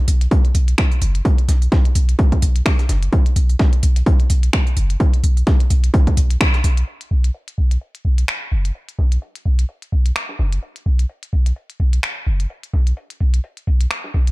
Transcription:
0.08 B1, closed hi-hat, open hi-hat
0.21 closed hi-hat
0.31 kick, closed hi-hat
0.45 closed hi-hat
0.55 B1, closed hi-hat, open hi-hat
0.68 closed hi-hat
0.78 finger snap, kick, snare, closed hi-hat
0.92 open hi-hat
1.02 F#1, closed hi-hat, open hi-hat
1.15 closed hi-hat
1.25 kick, closed hi-hat
1.38 closed hi-hat
1.49 B1, snare, closed hi-hat, open hi-hat
1.62 open hi-hat
1.72 kick, snare, closed hi-hat
1.85 closed hi-hat
1.95 B1, closed hi-hat, open hi-hat
2.09 closed hi-hat
2.19 kick, closed hi-hat
2.32 kick, closed hi-hat
2.42 B1, closed hi-hat, open hi-hat
2.56 closed hi-hat
2.66 finger snap, kick, snare, open hi-hat
2.79 snare, open hi-hat
2.89 F#1, snare, closed hi-hat, open hi-hat
3.03 closed hi-hat
3.13 kick, closed hi-hat
3.26 closed hi-hat
3.36 B1, closed hi-hat, open hi-hat
3.49 open hi-hat
3.59 kick, snare, closed hi-hat
3.73 closed hi-hat
3.83 B1, closed hi-hat, open hi-hat
3.96 closed hi-hat
4.06 kick, closed hi-hat
4.20 closed hi-hat
4.30 B1, closed hi-hat, open hi-hat
4.43 closed hi-hat
4.53 finger snap, kick
4.67 open hi-hat
4.77 F#1, open hi-hat
4.90 closed hi-hat
5.00 kick, closed hi-hat
5.14 closed hi-hat
5.24 B1, open hi-hat
5.37 open hi-hat
5.47 kick, snare, closed hi-hat
5.60 closed hi-hat
5.70 B1, closed hi-hat, open hi-hat
5.84 closed hi-hat
5.94 kick, closed hi-hat
6.07 kick, closed hi-hat
6.17 B1, closed hi-hat, open hi-hat
6.30 closed hi-hat
6.41 finger snap, kick, snare, open hi-hat
6.54 snare, open hi-hat
6.64 B1, snare, closed hi-hat, open hi-hat
6.77 closed hi-hat
6.87 closed hi-hat
7.01 closed hi-hat
7.11 B1, closed hi-hat
7.24 closed hi-hat
7.34 closed hi-hat
7.48 closed hi-hat
7.58 B1, closed hi-hat
7.71 closed hi-hat
7.81 closed hi-hat
7.95 closed hi-hat
8.05 B1, closed hi-hat
8.18 closed hi-hat
8.28 finger snap, closed hi-hat
8.52 F#1, closed hi-hat
8.65 closed hi-hat
8.75 closed hi-hat
8.89 closed hi-hat
8.99 B1, snare, closed hi-hat
9.12 closed hi-hat
9.22 closed hi-hat
9.35 closed hi-hat
9.45 B1, closed hi-hat
9.59 closed hi-hat
9.69 closed hi-hat
9.82 closed hi-hat
9.92 B1, closed hi-hat
10.06 closed hi-hat
10.16 finger snap, open hi-hat
10.29 snare
10.39 F#1, snare, closed hi-hat
10.53 closed hi-hat
10.63 closed hi-hat
10.76 closed hi-hat
10.86 B1, closed hi-hat
10.99 closed hi-hat
11.09 closed hi-hat
11.23 closed hi-hat
11.33 B1, closed hi-hat
11.46 closed hi-hat
11.56 closed hi-hat
11.70 closed hi-hat
11.80 B1, closed hi-hat
11.93 closed hi-hat
12.03 finger snap, closed hi-hat
12.27 F#1, closed hi-hat
12.40 closed hi-hat
12.50 closed hi-hat
12.63 closed hi-hat
12.73 B1, snare, closed hi-hat
12.87 closed hi-hat
12.97 closed hi-hat
13.10 closed hi-hat
13.20 B1, closed hi-hat
13.34 closed hi-hat
13.44 closed hi-hat
13.57 closed hi-hat
13.67 B1, closed hi-hat
13.81 closed hi-hat
13.91 finger snap, open hi-hat
14.04 snare
14.14 B1, snare, closed hi-hat
14.27 closed hi-hat

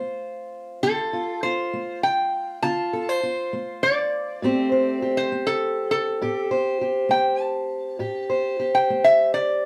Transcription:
Already playing: A3 C4 F4 C5
0.83 D3 F4 A4
1.13 F4
1.43 F4 C5
1.73 A3
2.03 G5
2.63 D3 F4 A5
2.93 A4
3.09 C5
3.23 F4
3.53 A3
3.83 D5
4.42 A2 A3 C4 G4 C5
4.72 C5
5.02 G4
5.17 C5
5.32 A3
5.47 A4
5.91 A4
6.21 A2 G4
6.51 C5
6.81 G4
7.09 A3 G5
7.40 A5
7.99 A2 G4
8.30 C5
8.59 G4
8.75 G5
8.90 A3
9.04 E5
9.34 D5

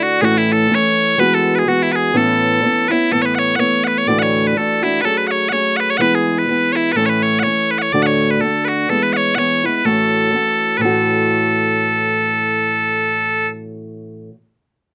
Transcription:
Already playing: D3 A3 D4 E4
0.03 F#4
0.21 A2 E3 A3 C#4 E4 F#4 G#4
0.38 E4
0.52 A4
0.69 E3 A3 C#4 E4
0.75 C#5
1.18 E3 G#3 B3 F#4 B4
1.34 A4
1.55 G#4 B4
1.66 E3 G#3 B3 F#4
1.83 E4
1.92 G#4 B4
2.13 A2 E3 B3 C#4 E4 A4
2.63 E3 B3 C#4 E4
2.88 C#4 E4 B4
2.92 B3
3.11 A2 E3 A3 B3 E4 A4
3.22 B4 C#5
3.35 C#5 F#5
3.56 E3 B3 F#5
3.60 A3 E4 C#5
3.84 B4 F#5
3.98 C#5
4.07 D2 A2 E3 A3 D4 F#4 D5
4.19 C#5 F#5
4.47 B4
4.56 E3 A3 D4 F#4 A4
4.82 E3 A3 D4 E4 F#4
5.01 F#3 A3 C#4 A4 B4
5.05 G#4
5.17 B4
5.27 C#5 F#5
5.49 F#3 A3 C#4 C#5 F#5
5.54 G#4
5.77 B4 F#5
5.90 C#5
5.97 E3 G#3 B3 B4 F#5
6.02 E4
6.15 G#4
6.38 B4
6.48 E3 G#3 B3 E4 B4
6.72 E4 C#5
6.92 A2 A4 B4
6.97 E3 A3 C#4 E4
7.06 B4 C#5
7.22 C#5
7.39 C#5 F#5
7.44 E3 A3 C#4 E4
7.71 B4
7.78 C#5 F#5
7.92 D2 A2 D3 A3 D4 F#4 D5
8.02 C#5 F#5
8.30 B4
8.41 D3 A3 D4 F#4 A4
8.65 F#4 B4
8.89 E3 G#3 B3 E4 A4
9.03 B4
9.13 C#5 F#5
9.35 E3 G#3 B3 C#5 F#5
9.40 E4
9.64 G#3 B3 E4 B4
9.76 B4
9.84 A2 E3 A3 C#4 F#4 A4
10.31 E3 A3 C#4 F#4
10.77 A2 E3 B4
10.81 A3 C#4 F#4 A4

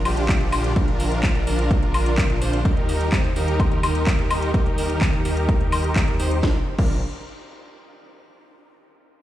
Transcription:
0.05 A#1 D4 F4 G4, open hi-hat, high woodblock
0.17 closed hi-hat
0.29 kick, clap, closed hi-hat
0.41 closed hi-hat
0.52 open hi-hat, high woodblock
0.64 closed hi-hat
0.76 A#1 D4 F4 A#4, kick, closed hi-hat
0.88 closed hi-hat
1.00 open hi-hat
1.12 closed hi-hat
1.23 D4 F4 A#4, kick, clap, closed hi-hat
1.35 closed hi-hat
1.47 A#1 D4 F4 A#4, open hi-hat
1.59 closed hi-hat
1.71 kick, closed hi-hat
1.83 closed hi-hat
1.94 open hi-hat, high woodblock
2.06 closed hi-hat
2.18 kick, clap, closed hi-hat
2.30 A#1 D4 F4 A#4, closed hi-hat
2.41 A#1 D4 F4 C5, open hi-hat
2.53 closed hi-hat
2.65 D#2 D#4 G4 A#4, kick, closed hi-hat
2.77 closed hi-hat
2.89 open hi-hat
3.01 closed hi-hat
3.12 D#2 D#4 G4 C5, kick, clap, closed hi-hat
3.24 closed hi-hat
3.36 D#2 D#4 G4 A#4, open hi-hat
3.48 closed hi-hat
3.60 kick, closed hi-hat, high woodblock
3.71 D#2 D#4 G4 A#4, closed hi-hat
3.83 D#2 D#4 G4 A#4, open hi-hat, high woodblock
3.95 closed hi-hat
4.07 kick, clap, closed hi-hat
4.19 closed hi-hat
4.31 open hi-hat, high woodblock
4.42 closed hi-hat
4.54 D#2 D#4 G4 A#4, kick, closed hi-hat
4.66 closed hi-hat
4.78 open hi-hat
4.90 closed hi-hat
5.01 D#2 D#4 G4 A#4, kick, clap, closed hi-hat
5.13 closed hi-hat
5.25 D#2 D#4 G4 A#4, open hi-hat
5.37 closed hi-hat
5.49 kick, closed hi-hat
5.61 closed hi-hat
5.72 open hi-hat, high woodblock
5.84 closed hi-hat
5.96 kick, clap, closed hi-hat
6.08 D#2 D#4 G4 A#4, closed hi-hat
6.19 D#2 D#4 G4 C5, open hi-hat
6.31 closed hi-hat
6.43 A#1 D4 F4 A#4, kick, snare
6.78 A#1 D4 F4 A#4, kick, crash

